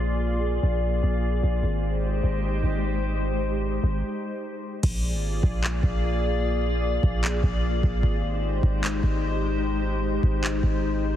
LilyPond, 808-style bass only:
\new Staff \with { instrumentName = "808-style bass" } { \clef bass \time 4/4 \key bes \mixolydian \tempo 4 = 150 bes,,4. bes,,4 bes,,4 bes,,8 | aes,,4. aes,,4 aes,,4.~ | aes,,4. aes,,8 r2 | bes,,8. aes,,8. bes,,4 bes,,4.~ |
bes,,4. bes,,4 bes,,4 bes,,8 | aes,,4. aes,,4 aes,,4.~ | aes,,4. aes,,4 aes,,4. | }